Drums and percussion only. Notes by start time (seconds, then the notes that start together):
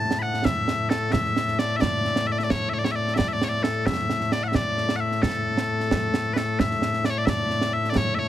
0.11 snare
0.34 snare
0.45 concert bass drum, snare
0.68 snare
0.91 snare
1.13 concert bass drum, snare
1.25 snare
1.36 snare
1.48 snare
1.59 snare
1.82 concert bass drum, snare
2.04 snare
2.16 snare
2.39 snare
2.50 concert bass drum, snare
2.85 snare
3.08 snare
3.19 concert bass drum, snare
3.42 snare
3.64 snare
3.86 concert bass drum, snare
3.98 snare
4.10 snare
4.21 snare
4.32 snare
4.54 concert bass drum, snare
4.77 snare
4.89 snare
5.11 snare
5.23 concert bass drum, snare
5.57 snare
5.80 snare
5.91 concert bass drum, snare
6.14 snare
6.36 snare
6.60 concert bass drum, snare
6.71 snare
6.82 snare
6.93 snare
7.04 snare
7.27 concert bass drum, snare
7.50 snare
7.61 snare
7.84 snare
7.95 concert bass drum, snare